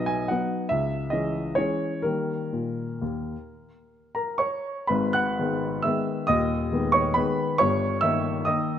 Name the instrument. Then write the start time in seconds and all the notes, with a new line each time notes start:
grand piano
Already playing: B1 F#3 B3 D#4 D#5
0.06 G#5
0.28 F#3 B3 D#4 F#5
0.69 C#2 E5
1.10 E3 G#3 C#4 D#5
1.55 E3 G#3 C#4 C#5
2.02 D#3 G3 A#3 A#4
2.53 A#2
3.02 D#2
4.15 A#4 A#5
4.38 C#5 C#6
4.87 G#1 G#2 B4 B5
5.13 F#5 F#6
5.39 D#3 G#3 B3
5.82 D#3 G#3 B3 E5 E6
6.27 D#1 D#2 D#5 D#6
6.72 D#3 G#3 B3
6.92 C#5 C#6
7.14 D#3 G#3 B3 B4 B5
7.58 G1 G2 C#5 C#6
8.01 D#3 A#3 D#4 E5 E6
8.45 D#3 A#3 D#4 D#5 D#6